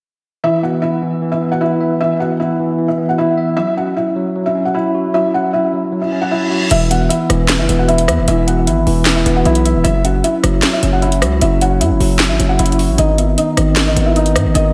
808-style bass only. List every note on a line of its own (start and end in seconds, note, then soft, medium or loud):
6.71 7.09 E1 loud
7.30 7.61 E1 loud
7.59 7.68 F#1 loud
7.69 8.10 E1 loud
8.08 8.19 E2 loud
8.18 8.27 E1 loud
8.28 8.68 E1 loud
8.67 8.86 G#1 loud
8.87 9.24 E1 loud
9.26 9.45 E1 loud
9.45 9.76 B1 loud
9.75 9.84 D#1 loud
9.85 10.22 F#1 loud
10.43 10.62 F#1 loud
10.83 11.23 F#1 loud
11.22 11.41 C#2 loud
11.42 11.82 F#1 loud
11.81 11.92 F#2 loud
11.91 12.00 F#1 loud
12.00 12.31 F#1 loud
12.30 12.39 G#1 loud
12.40 12.58 F#1 loud
12.59 12.90 F#1 loud
12.89 12.98 A1 loud
12.98 13.36 G#1 loud
13.57 13.88 G#1 loud
13.87 13.96 A1 loud
13.96 14.37 G#1 loud
14.36 14.47 G#2 loud
14.45 14.55 G#1 loud
14.55 14.73 G#1 loud